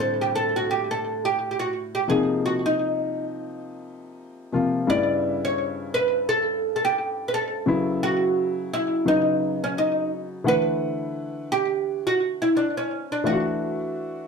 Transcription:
0.00 2.04 A2 medium
0.00 2.05 D3 medium
0.00 2.05 G3 medium
0.00 2.05 C4 medium
0.00 2.06 E4 medium
0.00 0.21 A4 medium
0.21 0.26 G4 medium
0.35 0.56 A4 medium
0.56 0.69 F#4 medium
0.71 0.91 G4 medium
0.91 1.25 A4 medium
1.25 1.50 G4 medium
1.51 1.59 G4 medium
1.59 1.69 F#4 medium
1.95 2.00 G4 medium
2.08 4.49 C3 medium
2.08 4.49 F3 medium
2.08 4.49 A#3 medium
2.08 4.50 D#4 medium
2.08 2.45 G#4 medium
2.46 2.51 F#4 medium
2.66 4.35 D#4 medium
4.52 4.88 C3 medium
4.52 4.88 F3 medium
4.52 4.88 A#3 medium
4.52 4.88 F4 medium
4.87 7.63 G2 medium
4.87 7.63 C#3 medium
4.87 7.63 G3 medium
4.87 4.96 A3 medium
4.87 7.64 E4 medium
4.87 5.44 D5 loud
4.95 7.66 B3 medium
5.45 5.94 C#5 loud
5.94 6.26 B4 loud
6.29 6.72 A4 loud
6.76 6.83 A4 medium
6.85 7.24 G4 medium
7.28 7.33 B4 medium
7.34 8.03 A4 loud
7.66 9.03 C#3 medium
7.66 9.04 F#3 medium
7.66 9.04 B3 medium
7.66 9.04 E4 medium
8.03 8.74 F#4 loud
8.74 9.08 E4 medium
9.05 10.43 C#3 medium
9.05 10.43 F#3 medium
9.05 10.43 B3 medium
9.05 10.44 D#4 medium
9.05 9.63 D#4 medium
9.64 9.69 C#4 medium
9.78 10.10 D#4 medium
10.44 13.21 D3 medium
10.44 13.20 E3 medium
10.44 13.21 A3 medium
10.44 11.51 B4 loud
10.44 13.21 F#5 medium
11.52 12.03 G4 loud
12.07 12.16 F#4 medium
12.42 12.56 E4 medium
12.57 12.77 D4 medium
12.77 13.09 C#4 medium
13.12 13.26 D4 medium
13.24 14.28 E3 medium
13.24 14.28 A3 medium
13.24 14.28 D4 medium
13.24 13.33 F4 medium
13.24 14.28 F#4 medium
13.33 14.28 F#4 medium

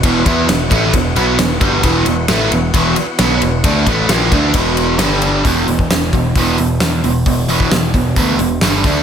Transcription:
0.00 0.25 E1 medium
0.00 0.25 E2 medium
0.00 4.96 E3 medium
0.00 4.95 B3 medium
0.00 4.95 F#4 medium
0.00 kick loud
0.00 ride loud
0.04 0.25 B2 loud
0.04 0.24 E3 loud
0.26 0.47 E2 loud
0.26 0.48 E3 medium
0.26 0.48 B3 loud
0.26 0.48 E4 loud
0.26 kick loud
0.26 ride medium
0.48 0.70 E1 medium
0.48 0.66 E2 medium
0.48 0.67 B2 medium
0.48 snare loud
0.48 ride loud
0.70 0.92 A1 medium
0.70 0.92 A2 medium
0.70 0.93 E3 medium
0.70 0.93 A3 loud
0.70 kick loud
0.70 ride medium
0.93 1.15 E1 medium
0.93 1.12 E2 medium
0.93 1.12 B2 medium
0.93 kick medium
0.93 ride medium
1.16 1.37 B1 loud
1.16 1.38 B2 medium
1.16 1.38 F#3 medium
1.16 1.38 B3 medium
1.16 ride medium
1.38 1.59 E1 medium
1.38 1.57 E2 medium
1.38 1.57 B2 medium
1.38 snare loud
1.38 ride loud
1.61 1.82 G1 medium
1.61 1.83 G2 medium
1.61 1.83 D3 medium
1.61 1.83 G3 loud
1.61 kick loud
1.61 ride medium
1.83 2.05 E1 medium
1.83 2.05 E2 medium
1.83 2.06 B2 medium
1.83 2.06 E3 loud
1.83 kick loud
1.83 ride loud
2.06 2.27 E1 medium
2.06 2.24 E2 medium
2.06 2.25 B2 medium
2.06 ride medium
2.28 2.50 A1 medium
2.28 2.50 A2 medium
2.28 2.51 E3 medium
2.28 2.51 A3 loud
2.28 snare loud
2.28 ride loud
2.51 2.72 E1 medium
2.51 2.69 E2 medium
2.51 2.69 B2 medium
2.51 ride medium
2.74 2.95 E1 medium
2.74 2.96 E2 loud
2.74 2.96 B2 loud
2.74 2.96 E3 loud
2.74 kick loud
2.74 ride loud
2.96 snare soft
2.96 ride medium
3.19 3.40 B1 medium
3.19 3.41 B2 medium
3.19 3.41 F#3 medium
3.19 3.41 B3 loud
3.19 snare loud
3.19 ride loud
3.42 3.63 E1 medium
3.42 3.60 E2 medium
3.42 3.60 B2 medium
3.42 ride medium
3.64 3.85 D2 medium
3.64 3.86 D3 medium
3.64 3.86 A3 medium
3.64 3.86 D4 loud
3.64 kick loud
3.64 ride loud
3.86 4.08 A1 medium
3.86 4.09 A2 medium
3.86 4.09 E3 medium
3.86 4.10 A3 loud
3.86 kick loud
3.86 ride medium
4.09 4.30 A#1 medium
4.09 4.32 A#2 medium
4.09 4.32 F3 loud
4.09 4.32 A#3 loud
4.09 snare loud
4.09 ride loud
4.32 4.53 D2 medium
4.32 4.54 D3 medium
4.32 4.55 A3 medium
4.32 4.55 D4 medium
4.32 kick medium
4.32 ride medium
4.54 4.96 E1 medium
4.54 5.00 E2 loud
4.54 5.00 B2 loud
4.54 5.00 E3 loud
4.54 kick loud
4.54 ride loud
4.77 ride medium
4.99 5.42 G1 medium
4.99 5.44 G2 loud
4.99 5.45 D3 medium
4.99 5.45 G3 medium
4.99 5.45 G3 loud
4.99 5.44 D4 medium
4.99 5.45 A4 medium
4.99 snare loud
4.99 ride loud
5.22 ride medium
5.44 5.65 E1 medium
5.44 5.66 E2 medium
5.44 5.66 B2 medium
5.44 5.67 E3 medium
5.44 kick loud
5.44 open hi-hat medium
5.67 5.88 E1 medium
5.67 5.88 E2 medium
5.67 5.88 B2 medium
5.67 open hi-hat soft
5.79 kick medium
5.90 6.11 E1 medium
5.90 6.11 E2 medium
5.90 6.11 B2 medium
5.90 snare loud
5.90 open hi-hat medium
6.02 snare soft
6.13 6.33 E1 medium
6.13 6.33 E2 medium
6.13 6.34 B2 medium
6.13 kick medium
6.13 open hi-hat soft
6.35 6.56 E1 medium
6.35 6.57 E2 medium
6.35 6.57 B2 medium
6.35 6.58 E3 loud
6.35 kick loud
6.35 open hi-hat medium
6.58 6.79 E1 medium
6.58 6.79 E2 medium
6.58 6.79 B2 medium
6.58 open hi-hat soft
6.80 7.01 E2 medium
6.80 7.01 B2 medium
6.80 snare loud
6.80 open hi-hat medium
7.04 7.24 E1 medium
7.04 7.24 E2 medium
7.04 7.24 B2 medium
7.04 open hi-hat medium
7.26 7.46 E1 medium
7.26 7.47 E2 medium
7.26 7.47 B2 medium
7.26 kick medium
7.26 open hi-hat medium
7.48 7.69 E1 medium
7.48 7.70 E2 medium
7.48 7.70 B2 loud
7.48 7.70 E3 medium
7.48 open hi-hat medium
7.60 kick medium
7.71 7.92 E1 medium
7.71 7.92 E2 medium
7.71 7.92 B2 medium
7.71 snare loud
7.71 open hi-hat medium
7.94 8.14 E1 medium
7.94 8.15 E2 medium
7.94 8.15 B2 medium
7.94 kick medium
7.94 open hi-hat soft
8.16 8.37 D2 medium
8.16 8.38 E2 medium
8.16 8.39 B2 loud
8.16 8.39 E3 loud
8.16 kick loud
8.16 open hi-hat medium
8.39 8.60 E1 medium
8.39 8.60 E2 medium
8.39 8.60 B2 medium
8.39 open hi-hat medium
8.61 8.82 G1 medium
8.61 8.83 G2 medium
8.61 8.83 D3 medium
8.61 8.84 G3 medium
8.61 snare loud
8.61 open hi-hat medium
8.84 9.03 D2 medium
8.84 9.03 D3 medium
8.84 9.03 A3 medium
8.84 9.03 D4 medium
8.84 kick loud
8.84 open hi-hat soft

